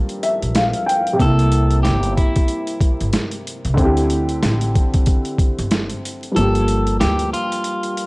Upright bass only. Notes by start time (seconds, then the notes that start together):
0.42 A#1
1.20 C2
1.85 G1
3.01 G1
3.65 C2
3.78 D2
4.43 A1
5.59 G1
6.37 G1
7.01 D2